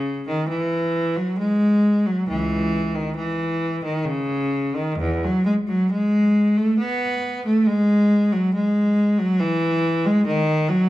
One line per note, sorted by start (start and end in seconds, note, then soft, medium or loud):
0.00 0.23 C#3 medium
0.27 0.49 D#3 medium
0.48 1.15 E3 medium
1.17 1.39 F#3 medium
1.38 2.04 G#3 medium
2.06 2.28 F#3 medium
2.28 2.90 C#2 medium
2.28 2.94 E3 medium
2.94 3.17 D#3 medium
3.16 3.82 E3 medium
3.84 4.06 D#3 medium
4.05 4.75 C#3 medium
4.75 5.00 D#3 medium
4.98 5.23 E2 medium
5.23 5.47 F#3 medium
5.45 5.53 G#3 medium
5.68 5.90 F#3 medium
5.91 6.56 G#3 medium
6.57 6.79 A3 medium
6.79 7.44 B3 medium
7.45 7.67 A3 medium
7.66 8.32 G#3 medium
8.32 8.54 F#3 medium
8.54 9.17 G#3 medium
9.18 9.40 F#3 medium
9.40 10.05 E3 medium
10.06 10.27 G#3 medium
10.26 10.69 D#3 medium
10.68 10.89 F#3 medium